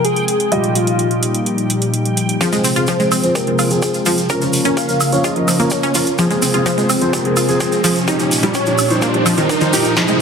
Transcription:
Already playing: analog synth pad C3 F3 G#3 F4 G#4, grand piano C4 G#4 F5, synth texture G5
0.05 analog synth lead G#4, closed hi-hat
0.16 closed hi-hat
0.28 closed hi-hat
0.40 closed hi-hat
0.52 analog synth pad A#2 G3 D#4 G4, grand piano G3 F4 D#5, analog synth lead G4, closed hi-hat
0.64 closed hi-hat
0.75 analog synth lead F4, closed hi-hat
0.87 closed hi-hat
0.99 closed hi-hat
1.11 closed hi-hat
1.23 closed hi-hat
1.34 closed hi-hat
1.46 closed hi-hat
1.58 closed hi-hat
1.70 closed hi-hat
1.82 closed hi-hat
1.94 closed hi-hat
2.05 closed hi-hat
2.17 closed hi-hat
2.29 closed hi-hat
2.41 analog synth pad C3 F3 G#3 F4 G#4, synth pluck F3, grand piano F3 C4 G#4, kick, closed hi-hat, riser, shaker
2.53 grand piano F3 C4 G#4, synth pluck G#3, closed hi-hat, shaker
2.64 synth pluck C4, open hi-hat, shaker
2.76 grand piano F3 C4 G#4, synth pluck F4, closed hi-hat, shaker
2.87 synth pluck F3, analog synth lead C5, kick, closed hi-hat, shaker
3.00 grand piano F3 C4 G#4, synth pluck G#3, closed hi-hat, shaker
3.12 synth pluck C4, open hi-hat, high woodblock, shaker
3.23 grand piano F3 C4 C5, closed hi-hat, shaker
3.35 grand piano F3 G4, analog synth lead A#4, kick, closed hi-hat, shaker
3.47 grand piano F3 C4 G#4, closed hi-hat
3.59 synth pluck F4, open hi-hat, high woodblock, shaker
3.70 grand piano F3 C4 G#4, closed hi-hat, shaker
3.82 grand piano F3, analog synth lead G#4, kick, closed hi-hat, shaker
3.94 closed hi-hat, shaker
4.06 synth pluck F3, grand piano F3 C4 G#4, open hi-hat, shaker
4.18 closed hi-hat, shaker
4.29 analog synth pad C#3 A#3 A#4, grand piano F3 C#4 A#4, synth pluck A#4, kick, closed hi-hat, shaker
4.41 grand piano F3 C#4 A#4, closed hi-hat, shaker
4.53 open hi-hat, shaker
4.65 grand piano F3 C#4 A#4, synth pluck C#4, closed hi-hat, shaker
4.77 analog synth lead F5, kick, closed hi-hat, shaker
4.89 grand piano F3 C#4 A#4, closed hi-hat, shaker
5.00 open hi-hat, high woodblock, shaker
5.12 grand piano F3 C#4 C#5, closed hi-hat, shaker
5.24 grand piano C#4 G#4, synth pluck F4, analog synth lead D#5, kick, closed hi-hat, shaker
5.36 grand piano F3 C#4 A#4, closed hi-hat
5.48 synth pluck F3, open hi-hat, high woodblock, shaker
5.60 grand piano F3 C#4 A#4, synth pluck A#3, closed hi-hat, shaker
5.70 grand piano F3 C#4 A#4, analog synth lead C#5, kick, closed hi-hat, shaker
5.83 synth pluck C#4, closed hi-hat, shaker
5.95 grand piano F3 C#4 A#4, synth pluck F4, open hi-hat, shaker
6.06 closed hi-hat, shaker
6.18 analog synth pad C3 G#3 G#4, synth pluck F3, grand piano F3 C4 G#4, kick, closed hi-hat, shaker
6.30 grand piano F3 C4 G#4, synth pluck G#3, closed hi-hat, shaker
6.42 synth pluck C4, open hi-hat, shaker
6.54 grand piano F3 C4 G#4, synth pluck F4, closed hi-hat, shaker
6.66 synth pluck F3, analog synth lead C5, kick, closed hi-hat, shaker
6.78 grand piano F3 C4 G#4, synth pluck G#3, closed hi-hat, shaker
6.89 synth pluck C4, open hi-hat, high woodblock, shaker
7.01 grand piano F3 C4 C5, closed hi-hat, shaker
7.13 grand piano C4 G4, analog synth lead A#4, kick, closed hi-hat, shaker
7.25 grand piano F3 C4 G#4, closed hi-hat
7.37 synth pluck F4, open hi-hat, high woodblock, shaker
7.49 grand piano F3 C4 G#4, closed hi-hat, shaker
7.60 grand piano F3 C4 G#4, analog synth lead G#4, kick, closed hi-hat, shaker
7.72 closed hi-hat, shaker
7.84 synth pluck F3, grand piano F3 C4 G#4, open hi-hat, shaker
7.96 closed hi-hat, shaker
8.08 analog synth pad A#2 G3 D#4 G4, grand piano F3 D#4 G4, synth pluck D#4, kick, closed hi-hat, shaker
8.20 grand piano F3 D#4 G4, closed hi-hat, shaker
8.31 open hi-hat, shaker
8.43 grand piano F3 D#4 G4, synth pluck G3, closed hi-hat, shaker
8.54 analog synth lead C#5, kick, closed hi-hat, shaker
8.66 grand piano F3 D#4 G4, closed hi-hat, shaker
8.78 open hi-hat, high woodblock, shaker
8.90 grand piano F3 D#4 C5, closed hi-hat, shaker
9.02 grand piano F3 D#4 F4, synth pluck A#3, analog synth lead C5, kick, closed hi-hat, shaker
9.14 grand piano F3 D#4 G4, closed hi-hat
9.26 synth pluck F3, open hi-hat, high woodblock, shaker
9.37 synth pluck D#3, grand piano F3 D#4 A#4, closed hi-hat, shaker
9.49 analog synth lead A#4, kick, closed hi-hat, shaker
9.61 synth pluck D#3, grand piano F3 D#4 C5, closed hi-hat, shaker
9.73 grand piano F3 D#4 A#4, synth pluck G4, open hi-hat, shaker
9.85 closed hi-hat, shaker
9.97 analog synth pad C3 G#3 F4 G#4, synth pluck F3, grand piano C4 G#4, kick, snare, closed hi-hat, shaker
10.08 grand piano F3 C4 G#4, synth pluck G#3, closed hi-hat, shaker

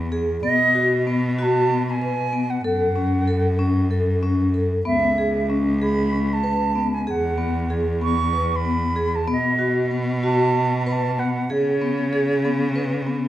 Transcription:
Already playing: cello E2
0.12 vibraphone G#4
0.42 cello B2, vibraphone B3, flute D#5
0.75 vibraphone F#4
1.07 vibraphone B3
1.38 vibraphone F#4, flute B5
1.42 flute A5
1.70 vibraphone B3
1.86 flute B5
1.90 flute G#5
2.02 vibraphone B4
2.33 vibraphone B3
2.50 flute F#5
2.64 cello F#2, vibraphone A4, flute F#5
2.96 vibraphone C#4
3.28 vibraphone A4
3.59 vibraphone C#4
3.91 vibraphone A4
4.23 vibraphone C#4
4.54 vibraphone A4
4.85 cello C#2, vibraphone B3, flute E5
5.18 vibraphone G#4
5.50 vibraphone C#4
5.82 vibraphone G#4, flute B5
6.12 vibraphone C#4
6.33 flute A5
6.44 vibraphone B4
6.76 vibraphone B3
6.94 flute G#5
7.07 cello E2, vibraphone G#4, flute F#5
7.38 vibraphone B3
7.70 vibraphone G#4
8.01 vibraphone B3, flute C#6
8.33 vibraphone B4
8.51 flute C#6
8.56 flute B5
8.65 vibraphone B3
8.96 vibraphone G#4
9.15 flute A5
9.28 cello B2, vibraphone B3
9.32 flute D#5
9.59 vibraphone F#4
9.91 vibraphone B3
10.23 vibraphone F#4, flute A5
10.54 vibraphone B3
10.87 vibraphone B4, flute B5
10.92 flute A5
11.18 vibraphone B3, flute F#5
11.50 cello C#3, vibraphone G#4, flute C#5
11.82 vibraphone B3
12.13 vibraphone G#4
12.45 vibraphone B3
12.76 vibraphone B4
13.07 vibraphone B3

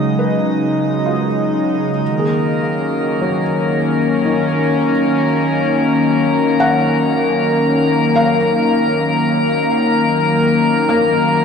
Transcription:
Already playing: analog synth pad C#3 F#3 G#3 D#4, felt piano G#4 A#4, synth texture D#5 D#6
0.19 felt piano B4
1.06 felt piano F4
1.99 analog synth pad D#3, synth texture A#4 A#5
2.11 analog synth pad A#3
2.19 felt piano G#3
2.54 analog synth pad F#3
2.65 analog synth pad C#4
3.21 felt piano F#3
4.25 felt piano D#3
6.60 felt piano F#5
8.16 felt piano F5
10.89 felt piano A#3

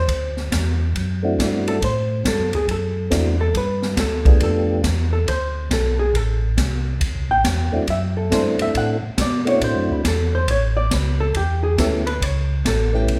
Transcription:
Already playing: hollow-body jazz guitar C5
0.08 tonewheel organ D2, kick, ride
0.37 snare
0.51 tonewheel organ E2, kick, snare, hi-hat pedal, ride
0.95 tonewheel organ F#2, kick, ride
1.23 tonewheel organ A3 C4 D4 E4 F#4
1.39 tonewheel organ G2, kick, snare, hi-hat pedal, ride
1.68 hollow-body jazz guitar A4, ride
1.82 tonewheel organ A2, hollow-body jazz guitar C5, kick, ride
2.25 tonewheel organ G2, hollow-body jazz guitar A4, kick, snare, hi-hat pedal, ride
2.39 tonewheel organ F#2
2.53 tonewheel organ D2, hollow-body jazz guitar G#4, ride
2.68 tonewheel organ F#2, hollow-body jazz guitar A4, kick, ride
3.10 tonewheel organ E2 A3 C4 D4 E4 F#4, kick, snare, hi-hat pedal, ride
3.41 hollow-body jazz guitar A4
3.54 tonewheel organ G2, hollow-body jazz guitar B4, kick, ride
3.82 snare
3.97 tonewheel organ D2, hollow-body jazz guitar A4, kick, snare, hi-hat pedal, ride
4.25 tonewheel organ A3 B3 D4 F4 G4, hollow-body jazz guitar G#4, kick, ride
4.40 tonewheel organ F2, hollow-body jazz guitar A4, kick, ride
4.83 tonewheel organ E2, kick, snare, hi-hat pedal, ride
5.13 hollow-body jazz guitar A4
5.27 tonewheel organ D2, hollow-body jazz guitar C5, kick, ride
5.70 tonewheel organ B1, hollow-body jazz guitar A4, kick, snare, hi-hat pedal, ride
5.99 hollow-body jazz guitar G#4
6.14 tonewheel organ A1, hollow-body jazz guitar A4, kick, ride
6.57 tonewheel organ C2, kick, snare, hi-hat pedal, ride
7.00 tonewheel organ D2, kick, ride
7.15 tonewheel organ C2
7.29 tonewheel organ A1, hollow-body jazz guitar G5
7.44 tonewheel organ E2, hollow-body jazz guitar F#5, kick, snare, hi-hat pedal, ride
7.72 tonewheel organ E2 A3 C4 D4 E4 F#4, hollow-body jazz guitar D#5
7.87 tonewheel organ F#2, hollow-body jazz guitar E5, kick, ride
8.17 hollow-body jazz guitar A4
8.30 tonewheel organ G2 A3 C4 D4 E4 A4, hollow-body jazz guitar C5, kick, snare, hi-hat pedal, ride
8.59 tonewheel organ G2, hollow-body jazz guitar E5, ride
8.74 tonewheel organ A2, hollow-body jazz guitar F#5, kick, ride
9.03 tonewheel organ A2, hollow-body jazz guitar E5
9.17 tonewheel organ B2, kick, snare, hi-hat pedal, ride
9.21 hollow-body jazz guitar D5
9.45 tonewheel organ A3 C4 D4 E4 F#4, hollow-body jazz guitar C#5, ride
9.61 tonewheel organ A2, hollow-body jazz guitar C5, kick, ride
9.75 tonewheel organ F#2
9.89 tonewheel organ D2, hollow-body jazz guitar E4
10.04 tonewheel organ E2, kick, snare, hi-hat pedal, ride
10.08 hollow-body jazz guitar A4
10.35 hollow-body jazz guitar C5
10.48 tonewheel organ A1, hollow-body jazz guitar C#5, kick, ride
10.77 hollow-body jazz guitar D5
10.91 tonewheel organ C#2, hollow-body jazz guitar B4, kick, snare, hi-hat pedal, ride
11.20 hollow-body jazz guitar A4
11.34 tonewheel organ E2, hollow-body jazz guitar G4, kick, ride
11.63 hollow-body jazz guitar G#4
11.77 tonewheel organ D2 A3 B3 C#4 E4 G4, hollow-body jazz guitar A4, kick, snare, hi-hat pedal, ride
12.07 hollow-body jazz guitar B4, ride
12.21 tonewheel organ C#2, hollow-body jazz guitar C#5, kick, ride
12.65 tonewheel organ A1, hollow-body jazz guitar A4, kick, snare, hi-hat pedal, ride
12.93 tonewheel organ A3 B3 C#4 E4 G4, hollow-body jazz guitar G4
13.08 tonewheel organ B1, kick, ride

